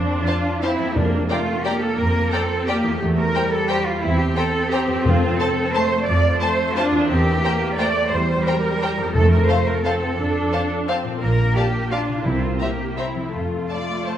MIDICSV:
0, 0, Header, 1, 8, 480
1, 0, Start_track
1, 0, Key_signature, -1, "major"
1, 0, Tempo, 341686
1, 1357, Time_signature, 3, 2, 24, 8
1, 14784, Tempo, 347625
1, 17664, Tempo, 364078
1, 19730, End_track
2, 0, Start_track
2, 0, Title_t, "Violin section"
2, 0, Program_c, 0, 48
2, 393, Note_on_c, 0, 81, 48
2, 506, Note_off_c, 0, 81, 0
2, 896, Note_on_c, 0, 81, 51
2, 1008, Note_off_c, 0, 81, 0
2, 1832, Note_on_c, 0, 82, 52
2, 1944, Note_off_c, 0, 82, 0
2, 2327, Note_on_c, 0, 82, 50
2, 2439, Note_off_c, 0, 82, 0
2, 3266, Note_on_c, 0, 82, 52
2, 3378, Note_off_c, 0, 82, 0
2, 3752, Note_on_c, 0, 82, 50
2, 3864, Note_off_c, 0, 82, 0
2, 4702, Note_on_c, 0, 82, 54
2, 4814, Note_off_c, 0, 82, 0
2, 5193, Note_on_c, 0, 82, 59
2, 5306, Note_off_c, 0, 82, 0
2, 6151, Note_on_c, 0, 82, 57
2, 6264, Note_off_c, 0, 82, 0
2, 6637, Note_on_c, 0, 82, 60
2, 6749, Note_off_c, 0, 82, 0
2, 7587, Note_on_c, 0, 81, 62
2, 7699, Note_off_c, 0, 81, 0
2, 8079, Note_on_c, 0, 81, 61
2, 8192, Note_off_c, 0, 81, 0
2, 8996, Note_on_c, 0, 81, 61
2, 9108, Note_off_c, 0, 81, 0
2, 9524, Note_on_c, 0, 81, 59
2, 9636, Note_off_c, 0, 81, 0
2, 10460, Note_on_c, 0, 82, 58
2, 10572, Note_off_c, 0, 82, 0
2, 10963, Note_on_c, 0, 82, 57
2, 11076, Note_off_c, 0, 82, 0
2, 11901, Note_on_c, 0, 82, 50
2, 12014, Note_off_c, 0, 82, 0
2, 12400, Note_on_c, 0, 82, 52
2, 12512, Note_off_c, 0, 82, 0
2, 13338, Note_on_c, 0, 81, 49
2, 13450, Note_off_c, 0, 81, 0
2, 13842, Note_on_c, 0, 81, 50
2, 13954, Note_off_c, 0, 81, 0
2, 14796, Note_on_c, 0, 81, 48
2, 14906, Note_off_c, 0, 81, 0
2, 15302, Note_on_c, 0, 81, 45
2, 15412, Note_off_c, 0, 81, 0
2, 16243, Note_on_c, 0, 81, 43
2, 16354, Note_off_c, 0, 81, 0
2, 16725, Note_on_c, 0, 81, 44
2, 16836, Note_off_c, 0, 81, 0
2, 17648, Note_on_c, 0, 82, 39
2, 17754, Note_off_c, 0, 82, 0
2, 18151, Note_on_c, 0, 82, 39
2, 18257, Note_off_c, 0, 82, 0
2, 19087, Note_on_c, 0, 81, 33
2, 19192, Note_off_c, 0, 81, 0
2, 19583, Note_on_c, 0, 81, 37
2, 19689, Note_off_c, 0, 81, 0
2, 19730, End_track
3, 0, Start_track
3, 0, Title_t, "Violin section"
3, 0, Program_c, 1, 48
3, 376, Note_on_c, 1, 72, 50
3, 380, Note_on_c, 1, 77, 50
3, 488, Note_off_c, 1, 72, 0
3, 493, Note_off_c, 1, 77, 0
3, 878, Note_on_c, 1, 77, 55
3, 884, Note_on_c, 1, 72, 55
3, 991, Note_off_c, 1, 77, 0
3, 997, Note_off_c, 1, 72, 0
3, 1824, Note_on_c, 1, 74, 48
3, 1827, Note_on_c, 1, 79, 48
3, 1936, Note_off_c, 1, 74, 0
3, 1939, Note_off_c, 1, 79, 0
3, 2315, Note_on_c, 1, 79, 55
3, 2320, Note_on_c, 1, 74, 53
3, 2428, Note_off_c, 1, 79, 0
3, 2432, Note_off_c, 1, 74, 0
3, 3270, Note_on_c, 1, 79, 48
3, 3277, Note_on_c, 1, 74, 48
3, 3382, Note_off_c, 1, 79, 0
3, 3390, Note_off_c, 1, 74, 0
3, 3767, Note_on_c, 1, 79, 57
3, 3768, Note_on_c, 1, 74, 56
3, 3880, Note_off_c, 1, 74, 0
3, 3880, Note_off_c, 1, 79, 0
3, 4703, Note_on_c, 1, 79, 51
3, 4709, Note_on_c, 1, 72, 53
3, 4815, Note_off_c, 1, 79, 0
3, 4822, Note_off_c, 1, 72, 0
3, 5183, Note_on_c, 1, 79, 58
3, 5191, Note_on_c, 1, 72, 57
3, 5295, Note_off_c, 1, 79, 0
3, 5304, Note_off_c, 1, 72, 0
3, 6129, Note_on_c, 1, 79, 54
3, 6136, Note_on_c, 1, 72, 57
3, 6241, Note_off_c, 1, 79, 0
3, 6249, Note_off_c, 1, 72, 0
3, 6633, Note_on_c, 1, 79, 57
3, 6641, Note_on_c, 1, 72, 60
3, 6745, Note_off_c, 1, 79, 0
3, 6754, Note_off_c, 1, 72, 0
3, 7585, Note_on_c, 1, 81, 58
3, 7589, Note_on_c, 1, 72, 57
3, 7697, Note_off_c, 1, 81, 0
3, 7702, Note_off_c, 1, 72, 0
3, 8073, Note_on_c, 1, 72, 62
3, 8074, Note_on_c, 1, 81, 67
3, 8185, Note_off_c, 1, 72, 0
3, 8186, Note_off_c, 1, 81, 0
3, 9002, Note_on_c, 1, 81, 59
3, 9010, Note_on_c, 1, 72, 54
3, 9114, Note_off_c, 1, 81, 0
3, 9122, Note_off_c, 1, 72, 0
3, 9505, Note_on_c, 1, 81, 62
3, 9506, Note_on_c, 1, 72, 61
3, 9618, Note_off_c, 1, 81, 0
3, 9619, Note_off_c, 1, 72, 0
3, 10454, Note_on_c, 1, 72, 54
3, 10456, Note_on_c, 1, 79, 57
3, 10566, Note_off_c, 1, 72, 0
3, 10569, Note_off_c, 1, 79, 0
3, 10941, Note_on_c, 1, 79, 61
3, 10942, Note_on_c, 1, 72, 62
3, 11053, Note_off_c, 1, 79, 0
3, 11054, Note_off_c, 1, 72, 0
3, 11894, Note_on_c, 1, 72, 55
3, 11899, Note_on_c, 1, 79, 52
3, 12007, Note_off_c, 1, 72, 0
3, 12011, Note_off_c, 1, 79, 0
3, 12394, Note_on_c, 1, 79, 58
3, 12396, Note_on_c, 1, 72, 58
3, 12507, Note_off_c, 1, 79, 0
3, 12508, Note_off_c, 1, 72, 0
3, 13332, Note_on_c, 1, 77, 55
3, 13334, Note_on_c, 1, 72, 51
3, 13444, Note_off_c, 1, 77, 0
3, 13446, Note_off_c, 1, 72, 0
3, 13832, Note_on_c, 1, 77, 53
3, 13834, Note_on_c, 1, 72, 54
3, 13944, Note_off_c, 1, 77, 0
3, 13947, Note_off_c, 1, 72, 0
3, 14781, Note_on_c, 1, 77, 44
3, 14782, Note_on_c, 1, 72, 45
3, 14892, Note_off_c, 1, 77, 0
3, 14893, Note_off_c, 1, 72, 0
3, 15285, Note_on_c, 1, 77, 56
3, 15286, Note_on_c, 1, 72, 56
3, 15396, Note_off_c, 1, 72, 0
3, 15396, Note_off_c, 1, 77, 0
3, 16221, Note_on_c, 1, 74, 46
3, 16228, Note_on_c, 1, 77, 42
3, 16331, Note_off_c, 1, 74, 0
3, 16339, Note_off_c, 1, 77, 0
3, 16703, Note_on_c, 1, 77, 47
3, 16708, Note_on_c, 1, 74, 43
3, 16814, Note_off_c, 1, 77, 0
3, 16818, Note_off_c, 1, 74, 0
3, 17671, Note_on_c, 1, 76, 38
3, 17673, Note_on_c, 1, 72, 41
3, 17777, Note_off_c, 1, 76, 0
3, 17779, Note_off_c, 1, 72, 0
3, 18145, Note_on_c, 1, 76, 41
3, 18153, Note_on_c, 1, 72, 42
3, 18250, Note_off_c, 1, 76, 0
3, 18259, Note_off_c, 1, 72, 0
3, 19094, Note_on_c, 1, 74, 51
3, 19551, Note_off_c, 1, 74, 0
3, 19585, Note_on_c, 1, 72, 46
3, 19730, Note_off_c, 1, 72, 0
3, 19730, End_track
4, 0, Start_track
4, 0, Title_t, "Cello section"
4, 0, Program_c, 2, 48
4, 0, Note_on_c, 2, 60, 79
4, 381, Note_on_c, 2, 65, 82
4, 384, Note_off_c, 2, 60, 0
4, 875, Note_on_c, 2, 64, 83
4, 885, Note_off_c, 2, 65, 0
4, 1341, Note_off_c, 2, 64, 0
4, 1345, Note_on_c, 2, 62, 81
4, 1820, Note_on_c, 2, 65, 83
4, 1822, Note_off_c, 2, 62, 0
4, 2311, Note_off_c, 2, 65, 0
4, 2314, Note_on_c, 2, 67, 80
4, 2558, Note_off_c, 2, 67, 0
4, 2560, Note_on_c, 2, 69, 84
4, 2789, Note_off_c, 2, 69, 0
4, 2795, Note_on_c, 2, 70, 91
4, 3267, Note_off_c, 2, 70, 0
4, 3269, Note_on_c, 2, 69, 87
4, 3761, Note_off_c, 2, 69, 0
4, 3769, Note_on_c, 2, 67, 85
4, 4230, Note_off_c, 2, 67, 0
4, 4462, Note_on_c, 2, 70, 86
4, 4921, Note_off_c, 2, 70, 0
4, 4958, Note_on_c, 2, 69, 93
4, 5200, Note_off_c, 2, 69, 0
4, 5213, Note_on_c, 2, 67, 94
4, 5437, Note_off_c, 2, 67, 0
4, 5438, Note_on_c, 2, 65, 79
4, 5663, Note_off_c, 2, 65, 0
4, 5666, Note_on_c, 2, 64, 92
4, 5892, Note_on_c, 2, 67, 81
4, 5893, Note_off_c, 2, 64, 0
4, 6128, Note_on_c, 2, 69, 95
4, 6135, Note_off_c, 2, 67, 0
4, 6626, Note_on_c, 2, 67, 83
4, 6630, Note_off_c, 2, 69, 0
4, 7096, Note_off_c, 2, 67, 0
4, 7099, Note_on_c, 2, 65, 88
4, 7563, Note_on_c, 2, 69, 91
4, 7572, Note_off_c, 2, 65, 0
4, 8062, Note_off_c, 2, 69, 0
4, 8062, Note_on_c, 2, 72, 101
4, 8525, Note_on_c, 2, 74, 100
4, 8532, Note_off_c, 2, 72, 0
4, 8995, Note_off_c, 2, 74, 0
4, 9005, Note_on_c, 2, 72, 95
4, 9497, Note_off_c, 2, 72, 0
4, 9510, Note_on_c, 2, 65, 87
4, 9966, Note_on_c, 2, 67, 96
4, 9977, Note_off_c, 2, 65, 0
4, 10919, Note_off_c, 2, 67, 0
4, 10930, Note_on_c, 2, 74, 102
4, 11396, Note_off_c, 2, 74, 0
4, 11407, Note_on_c, 2, 72, 87
4, 11885, Note_on_c, 2, 70, 91
4, 11887, Note_off_c, 2, 72, 0
4, 12855, Note_off_c, 2, 70, 0
4, 12857, Note_on_c, 2, 69, 94
4, 13082, Note_off_c, 2, 69, 0
4, 13090, Note_on_c, 2, 70, 76
4, 13328, Note_off_c, 2, 70, 0
4, 13333, Note_on_c, 2, 72, 86
4, 13583, Note_off_c, 2, 72, 0
4, 13585, Note_on_c, 2, 70, 80
4, 13827, Note_on_c, 2, 69, 77
4, 13831, Note_off_c, 2, 70, 0
4, 15007, Note_off_c, 2, 69, 0
4, 15743, Note_on_c, 2, 70, 82
4, 16189, Note_off_c, 2, 70, 0
4, 16222, Note_on_c, 2, 67, 82
4, 16715, Note_on_c, 2, 65, 67
4, 16716, Note_off_c, 2, 67, 0
4, 17182, Note_off_c, 2, 65, 0
4, 17184, Note_on_c, 2, 64, 73
4, 17416, Note_off_c, 2, 64, 0
4, 17421, Note_on_c, 2, 65, 64
4, 17665, Note_off_c, 2, 65, 0
4, 17668, Note_on_c, 2, 67, 62
4, 18137, Note_off_c, 2, 67, 0
4, 18143, Note_on_c, 2, 64, 55
4, 18609, Note_off_c, 2, 64, 0
4, 18614, Note_on_c, 2, 65, 54
4, 19730, Note_off_c, 2, 65, 0
4, 19730, End_track
5, 0, Start_track
5, 0, Title_t, "Harp"
5, 0, Program_c, 3, 46
5, 0, Note_on_c, 3, 41, 51
5, 0, Note_on_c, 3, 57, 40
5, 0, Note_on_c, 3, 60, 44
5, 0, Note_on_c, 3, 65, 43
5, 1087, Note_off_c, 3, 41, 0
5, 1104, Note_on_c, 3, 41, 52
5, 1164, Note_on_c, 3, 58, 44
5, 1231, Note_on_c, 3, 62, 43
5, 1280, Note_off_c, 3, 57, 0
5, 1291, Note_on_c, 3, 67, 45
5, 1312, Note_off_c, 3, 60, 0
5, 3862, Note_off_c, 3, 65, 0
5, 3974, Note_on_c, 3, 40, 56
5, 4035, Note_on_c, 3, 60, 48
5, 4083, Note_off_c, 3, 67, 0
5, 4100, Note_on_c, 3, 67, 46
5, 4117, Note_off_c, 3, 41, 0
5, 4162, Note_on_c, 3, 72, 46
5, 4180, Note_off_c, 3, 62, 0
5, 6643, Note_off_c, 3, 58, 0
5, 6844, Note_on_c, 3, 41, 63
5, 6890, Note_off_c, 3, 60, 0
5, 6907, Note_on_c, 3, 60, 48
5, 6972, Note_on_c, 3, 69, 52
5, 6992, Note_off_c, 3, 40, 0
5, 7017, Note_off_c, 3, 72, 0
5, 7034, Note_on_c, 3, 72, 48
5, 7055, Note_off_c, 3, 67, 0
5, 9718, Note_on_c, 3, 40, 61
5, 9767, Note_off_c, 3, 60, 0
5, 9784, Note_on_c, 3, 60, 49
5, 9843, Note_on_c, 3, 70, 48
5, 9867, Note_off_c, 3, 41, 0
5, 9891, Note_off_c, 3, 72, 0
5, 9908, Note_on_c, 3, 72, 47
5, 9931, Note_off_c, 3, 69, 0
5, 12609, Note_on_c, 3, 41, 53
5, 12653, Note_off_c, 3, 60, 0
5, 12669, Note_on_c, 3, 60, 45
5, 12736, Note_on_c, 3, 69, 46
5, 12746, Note_off_c, 3, 40, 0
5, 12779, Note_off_c, 3, 72, 0
5, 12796, Note_on_c, 3, 72, 46
5, 12808, Note_off_c, 3, 70, 0
5, 15500, Note_on_c, 3, 46, 51
5, 15564, Note_on_c, 3, 62, 41
5, 15628, Note_on_c, 3, 65, 39
5, 15641, Note_off_c, 3, 41, 0
5, 15671, Note_off_c, 3, 60, 0
5, 15690, Note_on_c, 3, 70, 41
5, 15733, Note_off_c, 3, 72, 0
5, 16935, Note_on_c, 3, 48, 43
5, 16994, Note_on_c, 3, 60, 34
5, 17058, Note_on_c, 3, 64, 34
5, 17078, Note_off_c, 3, 46, 0
5, 17103, Note_off_c, 3, 70, 0
5, 17110, Note_off_c, 3, 62, 0
5, 17120, Note_on_c, 3, 70, 34
5, 17141, Note_off_c, 3, 69, 0
5, 17142, Note_off_c, 3, 65, 0
5, 18376, Note_on_c, 3, 53, 34
5, 18419, Note_off_c, 3, 60, 0
5, 18435, Note_on_c, 3, 60, 33
5, 18495, Note_on_c, 3, 65, 29
5, 18509, Note_off_c, 3, 48, 0
5, 18553, Note_on_c, 3, 69, 31
5, 18567, Note_off_c, 3, 64, 0
5, 18597, Note_off_c, 3, 70, 0
5, 19730, Note_off_c, 3, 53, 0
5, 19730, Note_off_c, 3, 60, 0
5, 19730, Note_off_c, 3, 65, 0
5, 19730, Note_off_c, 3, 69, 0
5, 19730, End_track
6, 0, Start_track
6, 0, Title_t, "Viola section"
6, 0, Program_c, 4, 48
6, 0, Note_on_c, 4, 62, 75
6, 882, Note_on_c, 4, 60, 67
6, 894, Note_off_c, 4, 62, 0
6, 1354, Note_off_c, 4, 60, 0
6, 1366, Note_on_c, 4, 58, 67
6, 1823, Note_off_c, 4, 58, 0
6, 1835, Note_on_c, 4, 57, 67
6, 2318, Note_off_c, 4, 57, 0
6, 2329, Note_on_c, 4, 58, 73
6, 3249, Note_off_c, 4, 58, 0
6, 3273, Note_on_c, 4, 60, 74
6, 3763, Note_off_c, 4, 60, 0
6, 3767, Note_on_c, 4, 58, 69
6, 4229, Note_off_c, 4, 58, 0
6, 4232, Note_on_c, 4, 57, 65
6, 4697, Note_off_c, 4, 57, 0
6, 4706, Note_on_c, 4, 55, 71
6, 5662, Note_off_c, 4, 55, 0
6, 5672, Note_on_c, 4, 60, 75
6, 6127, Note_off_c, 4, 60, 0
6, 6144, Note_on_c, 4, 60, 85
6, 8034, Note_off_c, 4, 60, 0
6, 8062, Note_on_c, 4, 57, 75
6, 8532, Note_off_c, 4, 57, 0
6, 8539, Note_on_c, 4, 53, 66
6, 9003, Note_on_c, 4, 57, 78
6, 9012, Note_off_c, 4, 53, 0
6, 9507, Note_off_c, 4, 57, 0
6, 9515, Note_on_c, 4, 62, 90
6, 9974, Note_on_c, 4, 60, 73
6, 9979, Note_off_c, 4, 62, 0
6, 10432, Note_on_c, 4, 58, 79
6, 10448, Note_off_c, 4, 60, 0
6, 10926, Note_off_c, 4, 58, 0
6, 10937, Note_on_c, 4, 57, 71
6, 11405, Note_on_c, 4, 55, 80
6, 11409, Note_off_c, 4, 57, 0
6, 12854, Note_off_c, 4, 55, 0
6, 12863, Note_on_c, 4, 57, 74
6, 13813, Note_off_c, 4, 57, 0
6, 13839, Note_on_c, 4, 60, 66
6, 14296, Note_off_c, 4, 60, 0
6, 14306, Note_on_c, 4, 62, 77
6, 15262, Note_off_c, 4, 62, 0
6, 15273, Note_on_c, 4, 60, 66
6, 15736, Note_on_c, 4, 58, 61
6, 15743, Note_off_c, 4, 60, 0
6, 16712, Note_off_c, 4, 58, 0
6, 16726, Note_on_c, 4, 62, 58
6, 17186, Note_on_c, 4, 60, 52
6, 17187, Note_off_c, 4, 62, 0
6, 17654, Note_off_c, 4, 60, 0
6, 17669, Note_on_c, 4, 58, 52
6, 18147, Note_off_c, 4, 58, 0
6, 18152, Note_on_c, 4, 60, 49
6, 18614, Note_off_c, 4, 60, 0
6, 18633, Note_on_c, 4, 57, 47
6, 19730, Note_off_c, 4, 57, 0
6, 19730, End_track
7, 0, Start_track
7, 0, Title_t, "Double bass section"
7, 0, Program_c, 5, 48
7, 0, Note_on_c, 5, 41, 65
7, 303, Note_off_c, 5, 41, 0
7, 1356, Note_on_c, 5, 41, 71
7, 1745, Note_off_c, 5, 41, 0
7, 2788, Note_on_c, 5, 41, 68
7, 3181, Note_off_c, 5, 41, 0
7, 4226, Note_on_c, 5, 40, 69
7, 4621, Note_off_c, 5, 40, 0
7, 5667, Note_on_c, 5, 40, 71
7, 6054, Note_off_c, 5, 40, 0
7, 7108, Note_on_c, 5, 41, 77
7, 7494, Note_off_c, 5, 41, 0
7, 8537, Note_on_c, 5, 41, 77
7, 8927, Note_off_c, 5, 41, 0
7, 9983, Note_on_c, 5, 40, 74
7, 10370, Note_off_c, 5, 40, 0
7, 11407, Note_on_c, 5, 40, 72
7, 11803, Note_off_c, 5, 40, 0
7, 12852, Note_on_c, 5, 41, 77
7, 13246, Note_off_c, 5, 41, 0
7, 14297, Note_on_c, 5, 41, 65
7, 14695, Note_off_c, 5, 41, 0
7, 15754, Note_on_c, 5, 34, 65
7, 16144, Note_off_c, 5, 34, 0
7, 17181, Note_on_c, 5, 36, 52
7, 17577, Note_off_c, 5, 36, 0
7, 18618, Note_on_c, 5, 41, 48
7, 19005, Note_off_c, 5, 41, 0
7, 19730, End_track
8, 0, Start_track
8, 0, Title_t, "Timpani"
8, 0, Program_c, 6, 47
8, 1349, Note_on_c, 6, 41, 76
8, 2023, Note_off_c, 6, 41, 0
8, 7100, Note_on_c, 6, 41, 70
8, 7771, Note_off_c, 6, 41, 0
8, 12852, Note_on_c, 6, 41, 67
8, 13528, Note_off_c, 6, 41, 0
8, 17179, Note_on_c, 6, 48, 66
8, 17852, Note_off_c, 6, 48, 0
8, 19730, End_track
0, 0, End_of_file